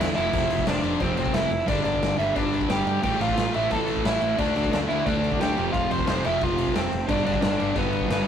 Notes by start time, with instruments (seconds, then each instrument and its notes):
Already playing: distorted electric guitar D3 A3 D4, overdriven electric guitar E4 E5
0.00 picked electric bass E2, distorted electric guitar A3 D4, snare, crash
0.14 picked electric bass F1, distorted electric guitar F2 C3 F3, overdriven electric guitar E4 E5, crash
0.18 distorted electric guitar F3
0.33 picked electric bass F1, kick, crash
0.50 picked electric bass F1, crash
0.58 kick
0.66 picked electric bass F1, distorted electric guitar F2 C3 F3, overdriven electric guitar D4 D5, snare, crash
0.82 picked electric bass F1, distorted electric guitar F2 C3 F3, crash
1.00 picked electric bass F1, overdriven electric guitar C4 C5, kick, crash
1.17 distorted electric guitar F2 C3 F3, overdriven electric guitar C4 C5, crash
1.26 kick
1.34 picked electric bass F1, overdriven electric guitar E4 E5, snare, crash
1.51 picked electric bass F1, crash
1.66 picked electric bass G1, distorted electric guitar G2 D3 G3, overdriven electric guitar D4 D5, kick, crash
1.84 picked electric bass G1, overdriven electric guitar D4 D5, crash
1.94 kick
2.02 picked electric bass G1, snare, crash
2.18 picked electric bass G1, distorted electric guitar G2 D3 G3, overdriven electric guitar E4 E5, crash
2.35 picked electric bass G1, distorted electric guitar G2 D3 G3, overdriven electric guitar D4 D5, kick, crash
2.54 crash
2.61 kick
2.69 picked electric bass G1, distorted electric guitar G2 D3 G3, overdriven electric guitar G4 G5, snare, crash
2.87 picked electric bass G2, crash
3.02 picked electric bass A1, distorted electric guitar A2 E3 A3, overdriven electric guitar G4 G5, kick, crash
3.21 picked electric bass A1, overdriven electric guitar F4 F5, crash
3.29 kick
3.37 picked electric bass A1, snare, crash
3.54 picked electric bass A1, distorted electric guitar A2 E3 A3, overdriven electric guitar E4 E5, crash
3.69 picked electric bass A1, distorted electric guitar A2 E3 A3, overdriven electric guitar A4 A5, kick, crash
3.88 crash
3.97 kick
4.04 picked electric bass A1, distorted electric guitar A2 E3 A3, overdriven electric guitar E4 E5, snare, crash
4.22 picked electric bass A1, crash
4.37 picked electric bass D2, distorted electric guitar D3 A3 D4, overdriven electric guitar D4 D5, kick, crash
4.56 picked electric bass D2, overdriven electric guitar D4 D5, crash
4.64 kick
4.72 picked electric bass D2, overdriven electric guitar D4 D5, snare, crash
4.89 picked electric bass D2, distorted electric guitar D3 A3 D4, overdriven electric guitar E4 E5, crash
5.06 picked electric bass D2, distorted electric guitar D3 A3 D4, overdriven electric guitar D4 D5, kick, crash
5.24 crash
5.32 kick
5.40 picked electric bass D2, distorted electric guitar D3 A3 D4, overdriven electric guitar G4 G5, snare, crash
5.55 picked electric bass F1, distorted electric guitar F2 C3 F3, crash
5.73 picked electric bass F1, overdriven electric guitar F4 F5, kick, crash
5.91 picked electric bass F1, overdriven electric guitar C5 C6, crash
5.99 kick
6.06 picked electric bass F1, distorted electric guitar F2 C3 F3, overdriven electric guitar C5 C6, snare, crash
6.23 picked electric bass F1, distorted electric guitar F2 C3 F3, overdriven electric guitar E4 E5, crash
6.41 picked electric bass F1, overdriven electric guitar F4 F5, kick, crash
6.58 distorted electric guitar F2 C3 F3, crash
6.67 kick
6.75 picked electric bass F1, overdriven electric guitar C4 C5, snare, crash
6.93 picked electric bass F1, crash
7.08 picked electric bass G1, distorted electric guitar G2 D3 G3, overdriven electric guitar D4 D5, kick, crash
7.26 picked electric bass G1, overdriven electric guitar D4 D5, crash
7.34 kick
7.41 picked electric bass G1, overdriven electric guitar D4 D5, snare, crash
7.58 picked electric bass G1, distorted electric guitar G2 D3 G3, crash
7.73 picked electric bass G1, distorted electric guitar G2 D3 G3, overdriven electric guitar B3, kick, crash
7.78 overdriven electric guitar B4
7.93 crash
8.01 kick
8.08 picked electric bass G1, distorted electric guitar G2 D3 G3, overdriven electric guitar B3 B4, snare, crash